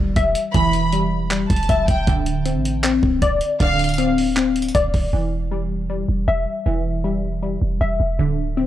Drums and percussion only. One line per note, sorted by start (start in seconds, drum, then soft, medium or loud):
0.16 kick loud
0.16 closed hi-hat medium
0.35 closed hi-hat medium
0.54 kick loud
0.54 closed hi-hat medium
0.73 closed hi-hat medium
0.93 closed hi-hat medium
1.31 clap loud
1.31 closed hi-hat medium
1.50 kick medium
1.50 closed hi-hat medium
1.56 closed hi-hat medium
1.63 closed hi-hat soft
1.69 kick loud
1.69 closed hi-hat medium
1.88 kick medium
1.88 closed hi-hat medium
2.07 kick loud
2.07 closed hi-hat medium
2.26 closed hi-hat medium
2.46 closed hi-hat medium
2.65 closed hi-hat medium
2.84 clap loud
2.84 closed hi-hat medium
3.03 kick medium
3.22 kick loud
3.22 closed hi-hat medium
3.41 closed hi-hat medium
3.60 kick loud
3.60 closed hi-hat medium
3.79 closed hi-hat medium
3.84 closed hi-hat medium
3.89 closed hi-hat medium
3.94 closed hi-hat medium
3.98 closed hi-hat medium
4.18 open hi-hat medium
4.36 clap loud
4.36 closed hi-hat medium
4.56 closed hi-hat medium
4.62 closed hi-hat medium
4.68 closed hi-hat medium
4.75 kick loud
4.75 closed hi-hat medium
4.94 kick medium
4.94 open hi-hat medium